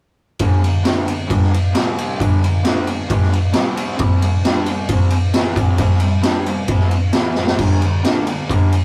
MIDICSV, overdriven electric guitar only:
0, 0, Header, 1, 3, 480
1, 0, Start_track
1, 0, Key_signature, 1, "major"
1, 0, Tempo, 450113
1, 430, Time_signature, 4, 2, 24, 8
1, 9432, End_track
2, 0, Start_track
2, 0, Title_t, "Overdriven electric guitar"
2, 0, Program_c, 0, 29
2, 424, Note_on_c, 0, 43, 97
2, 430, Note_on_c, 0, 50, 88
2, 438, Note_on_c, 0, 55, 94
2, 652, Note_off_c, 0, 43, 0
2, 652, Note_off_c, 0, 50, 0
2, 664, Note_on_c, 0, 43, 67
2, 664, Note_on_c, 0, 50, 64
2, 666, Note_off_c, 0, 55, 0
2, 858, Note_off_c, 0, 43, 0
2, 858, Note_off_c, 0, 50, 0
2, 891, Note_on_c, 0, 50, 82
2, 900, Note_on_c, 0, 57, 95
2, 906, Note_on_c, 0, 62, 97
2, 1122, Note_off_c, 0, 50, 0
2, 1128, Note_on_c, 0, 43, 72
2, 1135, Note_on_c, 0, 50, 70
2, 1136, Note_off_c, 0, 57, 0
2, 1139, Note_off_c, 0, 62, 0
2, 1329, Note_off_c, 0, 43, 0
2, 1332, Note_off_c, 0, 50, 0
2, 1364, Note_on_c, 0, 43, 95
2, 1369, Note_on_c, 0, 50, 96
2, 1375, Note_on_c, 0, 55, 110
2, 1603, Note_off_c, 0, 43, 0
2, 1610, Note_off_c, 0, 50, 0
2, 1613, Note_off_c, 0, 55, 0
2, 1843, Note_on_c, 0, 48, 96
2, 1852, Note_on_c, 0, 55, 99
2, 1861, Note_on_c, 0, 60, 108
2, 2326, Note_off_c, 0, 48, 0
2, 2331, Note_off_c, 0, 55, 0
2, 2333, Note_on_c, 0, 43, 94
2, 2335, Note_off_c, 0, 60, 0
2, 2347, Note_on_c, 0, 50, 87
2, 2355, Note_on_c, 0, 55, 90
2, 2571, Note_off_c, 0, 43, 0
2, 2573, Note_off_c, 0, 50, 0
2, 2582, Note_off_c, 0, 55, 0
2, 2584, Note_on_c, 0, 43, 68
2, 2586, Note_on_c, 0, 50, 67
2, 2776, Note_off_c, 0, 43, 0
2, 2777, Note_off_c, 0, 50, 0
2, 2808, Note_on_c, 0, 50, 84
2, 2818, Note_on_c, 0, 62, 99
2, 2820, Note_on_c, 0, 57, 90
2, 3048, Note_off_c, 0, 50, 0
2, 3053, Note_off_c, 0, 62, 0
2, 3054, Note_off_c, 0, 57, 0
2, 3074, Note_on_c, 0, 43, 64
2, 3081, Note_on_c, 0, 50, 72
2, 3260, Note_off_c, 0, 43, 0
2, 3264, Note_off_c, 0, 50, 0
2, 3290, Note_on_c, 0, 50, 111
2, 3292, Note_on_c, 0, 43, 99
2, 3300, Note_on_c, 0, 55, 108
2, 3515, Note_off_c, 0, 43, 0
2, 3529, Note_off_c, 0, 50, 0
2, 3534, Note_off_c, 0, 55, 0
2, 3758, Note_on_c, 0, 48, 92
2, 3766, Note_on_c, 0, 55, 93
2, 3772, Note_on_c, 0, 60, 110
2, 4225, Note_off_c, 0, 48, 0
2, 4229, Note_off_c, 0, 55, 0
2, 4238, Note_off_c, 0, 60, 0
2, 4238, Note_on_c, 0, 48, 99
2, 4242, Note_on_c, 0, 55, 94
2, 4251, Note_on_c, 0, 60, 107
2, 4482, Note_off_c, 0, 48, 0
2, 4484, Note_off_c, 0, 55, 0
2, 4489, Note_off_c, 0, 60, 0
2, 4509, Note_on_c, 0, 55, 66
2, 4515, Note_on_c, 0, 48, 60
2, 4697, Note_off_c, 0, 55, 0
2, 4700, Note_off_c, 0, 48, 0
2, 4751, Note_on_c, 0, 55, 87
2, 4757, Note_on_c, 0, 62, 98
2, 4758, Note_on_c, 0, 67, 102
2, 4979, Note_off_c, 0, 55, 0
2, 4982, Note_off_c, 0, 62, 0
2, 4982, Note_off_c, 0, 67, 0
2, 4987, Note_on_c, 0, 48, 68
2, 4997, Note_on_c, 0, 55, 76
2, 5176, Note_off_c, 0, 48, 0
2, 5181, Note_off_c, 0, 55, 0
2, 5239, Note_on_c, 0, 48, 97
2, 5243, Note_on_c, 0, 55, 111
2, 5248, Note_on_c, 0, 60, 111
2, 5449, Note_off_c, 0, 48, 0
2, 5465, Note_off_c, 0, 55, 0
2, 5467, Note_off_c, 0, 60, 0
2, 5695, Note_on_c, 0, 52, 97
2, 5708, Note_on_c, 0, 59, 98
2, 5712, Note_on_c, 0, 64, 102
2, 5916, Note_off_c, 0, 52, 0
2, 5921, Note_on_c, 0, 48, 97
2, 5923, Note_off_c, 0, 59, 0
2, 5928, Note_on_c, 0, 55, 92
2, 5932, Note_off_c, 0, 64, 0
2, 5937, Note_on_c, 0, 60, 98
2, 6136, Note_off_c, 0, 48, 0
2, 6149, Note_on_c, 0, 48, 86
2, 6157, Note_off_c, 0, 55, 0
2, 6163, Note_off_c, 0, 60, 0
2, 6169, Note_on_c, 0, 55, 101
2, 6176, Note_on_c, 0, 60, 107
2, 6393, Note_off_c, 0, 48, 0
2, 6406, Note_off_c, 0, 55, 0
2, 6406, Note_on_c, 0, 48, 66
2, 6412, Note_off_c, 0, 60, 0
2, 6419, Note_on_c, 0, 55, 69
2, 6606, Note_off_c, 0, 48, 0
2, 6612, Note_off_c, 0, 55, 0
2, 6633, Note_on_c, 0, 55, 87
2, 6644, Note_on_c, 0, 62, 92
2, 6645, Note_on_c, 0, 67, 109
2, 6878, Note_off_c, 0, 55, 0
2, 6886, Note_off_c, 0, 62, 0
2, 6886, Note_off_c, 0, 67, 0
2, 6890, Note_on_c, 0, 55, 79
2, 6891, Note_on_c, 0, 48, 58
2, 7089, Note_off_c, 0, 48, 0
2, 7089, Note_off_c, 0, 55, 0
2, 7136, Note_on_c, 0, 48, 108
2, 7146, Note_on_c, 0, 55, 104
2, 7153, Note_on_c, 0, 60, 109
2, 7353, Note_off_c, 0, 48, 0
2, 7377, Note_off_c, 0, 55, 0
2, 7381, Note_off_c, 0, 60, 0
2, 7611, Note_on_c, 0, 52, 90
2, 7619, Note_on_c, 0, 59, 86
2, 7620, Note_on_c, 0, 64, 100
2, 7851, Note_off_c, 0, 52, 0
2, 7854, Note_off_c, 0, 59, 0
2, 7855, Note_off_c, 0, 64, 0
2, 7855, Note_on_c, 0, 48, 90
2, 7858, Note_on_c, 0, 55, 87
2, 7861, Note_on_c, 0, 60, 116
2, 8091, Note_on_c, 0, 43, 88
2, 8093, Note_off_c, 0, 48, 0
2, 8095, Note_off_c, 0, 55, 0
2, 8096, Note_off_c, 0, 60, 0
2, 8105, Note_on_c, 0, 50, 105
2, 8111, Note_on_c, 0, 55, 95
2, 8331, Note_off_c, 0, 43, 0
2, 8338, Note_off_c, 0, 50, 0
2, 8341, Note_off_c, 0, 55, 0
2, 8348, Note_on_c, 0, 43, 57
2, 8350, Note_on_c, 0, 50, 69
2, 8540, Note_off_c, 0, 43, 0
2, 8541, Note_off_c, 0, 50, 0
2, 8569, Note_on_c, 0, 50, 92
2, 8581, Note_on_c, 0, 57, 100
2, 8588, Note_on_c, 0, 62, 93
2, 8801, Note_off_c, 0, 50, 0
2, 8807, Note_on_c, 0, 43, 65
2, 8814, Note_on_c, 0, 50, 70
2, 8817, Note_off_c, 0, 57, 0
2, 8821, Note_off_c, 0, 62, 0
2, 9010, Note_off_c, 0, 43, 0
2, 9014, Note_off_c, 0, 50, 0
2, 9057, Note_on_c, 0, 43, 100
2, 9065, Note_on_c, 0, 50, 106
2, 9070, Note_on_c, 0, 55, 109
2, 9297, Note_off_c, 0, 43, 0
2, 9301, Note_off_c, 0, 50, 0
2, 9303, Note_off_c, 0, 55, 0
2, 9432, End_track
3, 0, Start_track
3, 0, Title_t, "Muted overdriven electric guitar strokes"
3, 1616, Note_on_c, 9, 29, 57
3, 1723, Note_off_c, 9, 29, 0
3, 3528, Note_on_c, 9, 29, 64
3, 3635, Note_off_c, 9, 29, 0
3, 5462, Note_on_c, 9, 29, 59
3, 5568, Note_off_c, 9, 29, 0
3, 7366, Note_on_c, 9, 29, 59
3, 7472, Note_off_c, 9, 29, 0
3, 9320, Note_on_c, 9, 29, 62
3, 9427, Note_off_c, 9, 29, 0
3, 9432, End_track
0, 0, End_of_file